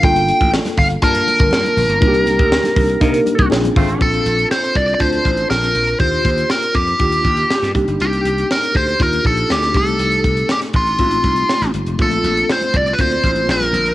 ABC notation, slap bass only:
X:1
M:4/4
L:1/16
Q:1/4=120
K:Bb
V:1 name="Slap bass" clef=bass
G,,,3 A,,,2 z G,,,2 G,,2 z G,,, G,, z B,,, G,,, | C,,3 D,,2 z C,,2 C,2 z C,, B,,,2 _A,,,2 | B,,,2 B,,,2 z2 C,,2 D,,2 A,,,2 B,,,2 B,,,2 | E,,2 E,,2 z2 F,,2 E,,2 E,,2 z G,, C,, G,,, |
C,,2 C,,2 z2 D,,2 E,,2 B,,,2 D,,2 C,,2 | C,,2 C,,2 z2 A,,,2 A,,,2 C,,2 z A,,, G,,, F,,, | B,,,2 B,,,2 z2 C,,2 D,,2 A,,,2 B,,,2 B,,,2 |]